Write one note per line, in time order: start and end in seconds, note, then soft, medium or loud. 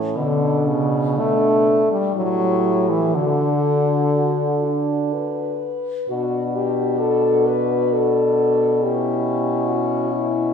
0.00 0.18 A2 medium
0.00 0.81 C#4 medium
0.17 1.84 B2 soft
0.17 0.69 D3 medium
0.17 1.17 D4 soft
0.67 1.20 C#3 medium
1.18 1.91 A3 medium
1.18 1.83 D4 soft
1.18 2.17 D4 soft
1.92 2.15 G3 soft
2.15 3.17 A2 soft
2.15 2.91 F#3 medium
2.15 3.16 E4 soft
2.15 3.18 G4 soft
2.90 3.16 E3 soft
3.14 5.14 D3 soft
3.14 5.76 D3 soft
3.14 5.63 F#4 soft
3.14 4.07 F#4 soft
4.16 4.67 F#4 soft
4.65 5.15 D4 soft
5.14 6.09 B4 soft
6.09 10.54 B2 soft
6.09 8.79 D4 soft
6.09 6.57 F#4 medium
6.09 8.79 F#4 soft
6.55 6.99 G4 medium
7.00 7.49 A4 medium
7.48 7.95 B4 medium
7.93 8.85 A4 medium
8.83 10.53 C#4 soft
8.83 10.38 E4 soft
8.83 9.71 G4 medium
9.69 10.14 F#4 medium
10.12 10.54 E4 medium